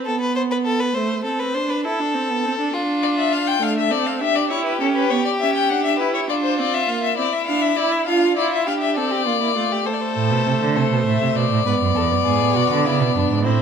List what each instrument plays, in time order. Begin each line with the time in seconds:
0.06 viola B3, violin A4
0.21 violin B4
0.36 violin C5
0.51 violin B4
0.66 violin A4
0.80 violin B4
0.94 viola A3, violin C5
1.24 viola C4, violin A4
1.40 violin B4
1.55 viola D4, violin C5
1.70 violin B4
1.85 viola E4, violin A4
1.99 viola D4
2.14 viola C4
2.29 viola B3
2.45 viola C4
2.59 viola D4
2.73 viola D4, violin F4
3.03 violin D5
3.18 violin E5
3.33 violin F5
3.48 violin G5
3.61 viola A3, violin D4 F5
3.78 violin E5
3.91 viola C4, violin A4 D5
4.06 violin F5
4.21 viola D4, violin G4 E5
4.35 violin D5
4.50 viola E4, violin C#5
4.65 violin B4
4.81 viola C#4, violin A4
4.95 violin B4
5.10 viola B3, violin C#5
5.25 violin D5
5.40 viola C#4, violin E5
5.55 violin G5
5.70 viola D4, violin F#5
5.84 violin E5
5.99 viola E4, violin B4
6.14 violin C#5
6.29 viola D4, violin F4 D5
6.44 violin C5
6.59 viola C4, violin D5
6.74 violin E5
6.89 viola A#3, violin F5
7.03 violin E5
7.17 viola C4, violin E4 D5
7.33 violin E5
7.46 viola D4, violin F5
7.62 violin E5
7.77 viola E4, violin D5
7.92 violin E5
8.05 violin D4 F5, viola F4
8.37 viola E4, violin F4 D5
8.52 violin E5
8.67 viola D4, violin G4 F5
8.81 violin E5
8.96 viola C4, violin A4 D5
9.12 violin G4
9.26 viola A#3, violin F4
9.42 violin E4
9.56 viola A3, violin F4
9.72 violin G4
9.86 viola A3, violin A4 C5
9.93 violin D5
10.00 violin C5
10.16 cello A2
10.31 cello B2
10.46 cello C3
10.61 cello D3
10.76 cello C3, violin A4 C5
10.91 cello B2
11.06 cello A2, violin E5
11.21 cello C3
11.36 cello B2, violin D5
11.51 cello A2
11.66 cello G#2, viola B3, violin B4
11.80 cello F#2
11.95 cello E2, violin A4
12.11 cello F#2
12.25 cello G#2, violin G#4
12.40 cello A2
12.55 cello B2, violin F#4
12.70 cello D3
12.85 cello C#3, violin E4
13.00 cello B2
13.15 cello F#2, violin D4
13.29 cello G#2
13.44 cello A2, viola C4, violin E4 C5